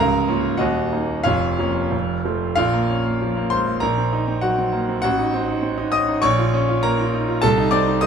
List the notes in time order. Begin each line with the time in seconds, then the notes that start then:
Already playing: C#1 C#2 A#4 F5 A#5
0.28 A#3 C#4 F4
0.57 D#1 D#2 F#4 D#5 F#5
0.92 A#3 D#4
1.24 F1 F2 F4 C#5 F5
1.58 F3 A#3 C#4
1.91 F1 F2
2.25 F3 A3 C4
2.56 A#1 F4 F5
2.73 A#3
2.90 C#4
3.05 A#3
3.22 F3
3.37 A#3
3.50 G#3 C5 C6
3.67 A#3
3.80 A#1 A#4 A#5
3.98 C4
4.13 D#4
4.28 C4
4.41 F#3 F#4 F#5
4.58 C4
4.73 A#3
4.89 C4
5.02 A1 F#4 F#5
5.19 D#4
5.34 C4
5.48 D#4
5.63 C4
5.78 D#4
5.92 C#4 D#5 D#6
6.09 D#4
6.22 A#1 C#5 C#6
6.39 F4
6.54 C#4
6.69 F4
6.83 A#3 A#4 A#5
6.99 F4
7.14 D#4
7.28 F4
7.42 C2 A4 A5
7.58 D#4
7.71 C4 D5 D6
7.88 D#4
8.01 A3 D#5 D#6